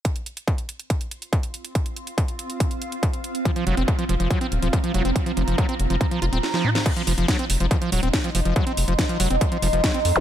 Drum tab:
CC |----------------|----------------|----------------|----------------|
HH |xxxxxxxxxxxxxxxx|xxxxxxxxxxxxxxxx|xxxxxxxxxxxxxxxx|xxxxxxxxxxxx----|
SD |----------------|----------------|----------------|------------oo-o|
T2 |----------------|----------------|----------------|--------------o-|
BD |o---o---o---o---|o---o---o---o---|o---o---o---o---|o---o---o-------|

CC |x---------------|----------------|
HH |xxoxxxoxxxoxxxox|xxoxxxoxxxoxxxox|
SD |----o-------o---|----o-------o---|
T2 |----------------|----------------|
BD |o---o---o---o---|o---o---o---o---|